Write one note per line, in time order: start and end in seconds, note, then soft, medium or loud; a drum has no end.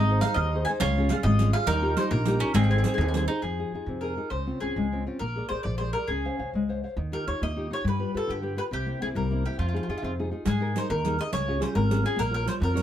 0.00 0.20 G#1 loud
0.00 0.22 G#3 medium
0.00 0.80 D#4 loud
0.00 0.19 D#5 loud
0.09 0.24 D#4 medium
0.09 0.24 G#4 soft
0.09 0.24 C5 medium
0.21 0.47 D#4 medium
0.21 0.36 F5 loud
0.21 riq medium
0.25 0.48 G#4 soft
0.25 0.48 C5 medium
0.34 0.64 D#2 loud
0.34 0.63 D#5 loud
0.39 0.67 D#3 medium
0.54 0.67 D#4 soft
0.54 0.67 G#4 soft
0.54 0.69 C5 medium
0.65 0.79 D#4 soft
0.65 0.78 G#4 soft
0.65 0.70 G#5 loud
0.65 riq soft
0.70 0.79 C5 medium
0.80 1.09 C#2 loud
0.80 1.10 C#3 medium
0.80 1.67 F4 loud
0.80 1.08 C#5 loud
0.80 riq medium
0.97 1.11 C#4 medium
0.97 1.11 F4 medium
0.97 1.11 G#4 medium
1.09 1.35 C#4 medium
1.09 1.35 F4 medium
1.09 1.35 G#4 medium
1.09 1.15 F5 medium
1.09 riq medium
1.23 1.52 G#1 loud
1.23 1.54 G#3 medium
1.23 1.51 D#5 loud
1.39 1.53 C#4 medium
1.39 1.54 F4 medium
1.39 1.54 G#4 medium
1.39 riq medium
1.53 1.65 C#4 medium
1.53 1.66 F4 soft
1.53 1.66 G#4 medium
1.53 1.68 F5 loud
1.53 riq soft
1.66 1.95 D#2 loud
1.66 1.95 D#3 medium
1.66 2.42 D#4 loud
1.66 1.94 A#4 loud
1.66 riq medium
1.82 1.96 D#4 soft
1.82 1.96 F4 medium
1.82 1.96 G4 medium
1.97 2.20 D#4 medium
1.97 2.21 F4 medium
1.97 2.20 G4 medium
1.97 2.10 C5 medium
1.97 riq medium
2.10 2.39 A#1 loud
2.10 2.39 A#3 medium
2.10 2.51 A#4 loud
2.26 2.38 D#4 medium
2.26 2.39 F4 soft
2.26 2.39 G4 medium
2.26 riq medium
2.39 2.54 C#4 medium
2.39 2.51 D#4 medium
2.39 2.51 F4 soft
2.39 2.52 G4 medium
2.39 riq soft
2.54 2.83 G#1 loud
2.54 2.83 G#3 medium
2.54 3.30 C4 loud
2.54 2.62 G#4 medium
2.54 riq medium
2.64 2.70 G#4 medium
2.68 2.83 D#4 soft
2.68 2.84 G#4 soft
2.68 2.77 G#4 medium
2.68 2.84 C5 medium
2.78 2.84 G#4 medium
2.84 3.08 D#4 soft
2.84 3.08 G#4 soft
2.84 2.92 G#4 medium
2.84 3.08 C5 medium
2.84 riq medium
2.94 3.27 D#2 loud
2.94 3.00 G#4 medium
2.99 3.28 D#3 medium
2.99 3.07 G#4 medium
3.08 3.15 G#4 medium
3.14 3.27 D#4 medium
3.14 3.28 G#4 soft
3.14 3.23 G#4 medium
3.14 3.28 C5 medium
3.14 riq medium
3.28 3.41 D#4 medium
3.28 3.40 D#4 soft
3.28 3.40 G#4 soft
3.28 3.40 C5 medium
3.28 riq soft
3.42 3.62 F2 medium
3.42 3.72 F3 soft
3.42 4.04 G#4 medium
3.58 3.73 D#4 soft
3.58 3.74 F4 soft
3.58 3.74 G#4 soft
3.72 3.81 F2 soft
3.72 3.98 D#4 soft
3.72 3.98 F4 soft
3.72 3.98 G#4 soft
3.86 4.15 F2 medium
3.86 4.17 C3 soft
4.01 4.16 D#4 soft
4.01 4.16 F4 soft
4.01 4.17 G#4 soft
4.01 4.30 A#4 medium
4.17 4.28 D#4 soft
4.17 4.29 F4 soft
4.17 4.29 G#4 soft
4.30 4.51 C#2 medium
4.30 4.60 C#3 soft
4.30 4.59 C5 medium
4.47 4.61 C4 soft
4.47 4.61 C#4 soft
4.47 4.61 F4 soft
4.60 4.71 C#2 medium
4.60 4.86 C4 soft
4.60 4.86 C#4 soft
4.60 4.86 F4 soft
4.60 5.02 G#4 medium
4.76 5.05 C#2 medium
4.76 5.05 G#3 medium
4.92 5.06 C4 soft
4.92 5.05 C#4 soft
4.92 5.06 F4 soft
5.06 5.18 C4 soft
5.06 5.17 C#4 soft
5.06 5.18 F4 soft
5.19 5.40 A#1 medium
5.19 5.49 A#3 soft
5.19 5.47 A#4 medium
5.36 5.49 G#4 soft
5.36 5.49 A#4 soft
5.36 5.50 D5 soft
5.49 5.59 A#1 soft
5.49 5.74 G#4 soft
5.49 5.74 A#4 soft
5.49 5.62 C5 medium
5.49 5.74 D5 soft
5.63 5.93 A#1 medium
5.63 5.93 F3 medium
5.63 5.77 D5 medium
5.78 5.95 G#4 soft
5.78 5.95 A#4 soft
5.78 5.92 C5 medium
5.78 5.96 D5 soft
5.93 6.07 G#4 soft
5.93 6.08 A#4 medium
5.93 6.06 A#4 soft
5.97 6.07 D5 soft
6.08 6.28 C#2 medium
6.08 6.38 C#4 soft
6.08 6.49 G#4 medium
6.25 6.38 C5 soft
6.25 6.38 C#5 soft
6.25 6.38 F5 soft
6.39 6.48 C#2 medium
6.39 6.62 C5 soft
6.39 6.63 C#5 soft
6.39 6.63 F5 soft
6.53 6.82 C#2 medium
6.53 6.83 G#3 soft
6.69 6.82 C5 soft
6.69 6.82 C#5 soft
6.69 6.83 F5 soft
6.84 6.94 C5 soft
6.84 6.94 C#5 soft
6.84 6.95 F5 soft
6.97 7.16 D#2 medium
6.97 7.26 D#3 soft
7.12 7.26 D#4 soft
7.12 7.26 F4 soft
7.12 7.27 G4 soft
7.12 7.26 A#4 medium
7.27 7.36 D#2 medium
7.27 7.51 D#4 soft
7.27 7.51 F4 soft
7.27 7.51 G4 soft
7.27 7.41 C#5 medium
7.42 7.70 D#2 medium
7.42 7.70 A#3 soft
7.42 7.69 D#5 medium
7.56 7.69 D#4 soft
7.56 7.70 F4 soft
7.56 7.70 G4 soft
7.70 7.82 D#4 soft
7.70 7.82 F4 soft
7.70 7.82 G4 soft
7.70 7.85 C#5 medium
7.84 8.04 G2 medium
7.84 8.13 G3 medium
7.84 8.14 B4 medium
7.99 8.13 F4 soft
7.99 8.14 G4 soft
7.99 8.13 B4 soft
8.14 8.24 G2 medium
8.14 8.38 F4 soft
8.14 8.38 G4 soft
8.14 8.30 A4 medium
8.14 8.38 B4 soft
8.27 8.57 G2 medium
8.27 8.56 D3 soft
8.27 8.57 G4 medium
8.42 8.55 F4 soft
8.42 8.56 G4 soft
8.42 8.56 B4 soft
8.57 8.68 F4 soft
8.57 8.68 G4 soft
8.57 8.69 B4 soft
8.57 8.63 B4 medium
8.71 8.91 C2 medium
8.71 9.00 C3 medium
8.71 9.00 G4 medium
8.86 9.00 A#3 soft
8.86 9.01 C4 soft
8.86 9.01 E4 soft
9.01 9.10 C2 medium
9.01 9.25 A#3 soft
9.01 9.25 C4 soft
9.01 9.26 E4 soft
9.01 9.07 G#4 medium
9.15 9.44 C2 medium
9.15 9.44 G3 soft
9.15 9.43 A#4 medium
9.31 9.45 A#3 soft
9.31 9.45 C4 soft
9.31 9.45 E4 soft
9.46 9.57 A#3 soft
9.46 9.57 C4 soft
9.46 9.57 E4 soft
9.46 9.58 G4 medium
9.59 9.78 F2 medium
9.59 9.88 F3 medium
9.59 9.66 F4 medium
9.69 9.75 F4 soft
9.73 9.88 D#4 soft
9.73 9.88 F4 soft
9.73 9.82 F4 soft
9.73 9.88 G#4 soft
9.83 9.88 F4 soft
9.88 9.97 F2 medium
9.88 10.12 D#4 soft
9.88 10.12 F4 soft
9.88 9.96 F4 soft
9.88 10.12 G#4 soft
9.98 10.03 F4 soft
10.02 10.31 F2 medium
10.02 10.31 C3 soft
10.02 10.11 F4 soft
10.19 10.30 D#4 soft
10.19 10.30 F4 soft
10.19 10.31 G#4 soft
10.31 10.43 D#4 soft
10.31 10.43 F4 soft
10.31 10.43 G#4 soft
10.45 10.74 G#2 loud
10.45 10.74 G#3 medium
10.45 10.77 G#4 medium
10.45 riq medium
10.60 10.75 D#4 soft
10.60 10.75 G#4 soft
10.60 10.75 A#4 medium
10.76 10.99 D#4 soft
10.76 10.99 G#4 soft
10.76 10.99 A#4 soft
10.76 10.89 C5 medium
10.76 riq medium
10.90 11.18 D#2 loud
10.90 11.18 D#3 medium
10.90 11.17 A#4 medium
11.05 11.19 D#4 medium
11.05 11.19 G#4 soft
11.05 11.19 A#4 medium
11.05 riq medium
11.19 11.30 D#4 soft
11.19 11.30 G#4 soft
11.19 11.31 A#4 soft
11.19 11.32 D#5 loud
11.19 riq soft
11.33 11.61 C#2 loud
11.33 11.61 C#3 medium
11.33 11.60 C#5 loud
11.33 riq medium
11.48 11.59 C#4 soft
11.48 11.59 F4 soft
11.48 11.60 G#4 soft
11.60 11.84 C#4 medium
11.60 11.84 F4 soft
11.60 11.84 G#4 medium
11.60 11.75 C5 medium
11.60 riq medium
11.75 12.03 G#1 loud
11.75 12.03 G#3 medium
11.75 12.02 A#4 medium
11.90 12.01 C#4 soft
11.90 12.02 F4 soft
11.90 12.03 G#4 medium
11.90 riq medium
12.03 12.14 C#4 soft
12.03 12.15 F4 soft
12.03 12.15 G#4 soft
12.03 12.18 G#4 medium
12.03 riq soft
12.16 12.46 A#1 medium
12.16 12.45 A#3 medium
12.16 12.33 A#4 loud
12.16 riq medium
12.31 12.45 F4 soft
12.31 12.45 A#4 soft
12.31 12.47 A#4 medium
12.31 12.45 C#5 medium
12.46 12.70 F4 soft
12.46 12.70 A#4 soft
12.46 12.53 C5 medium
12.46 12.70 C#5 medium
12.46 riq medium
12.60 12.82 F2 loud
12.60 12.82 F3 medium
12.60 12.82 A#4 medium
12.74 12.82 F4 medium
12.74 12.82 A#4 soft
12.74 12.82 C#5 medium
12.74 riq medium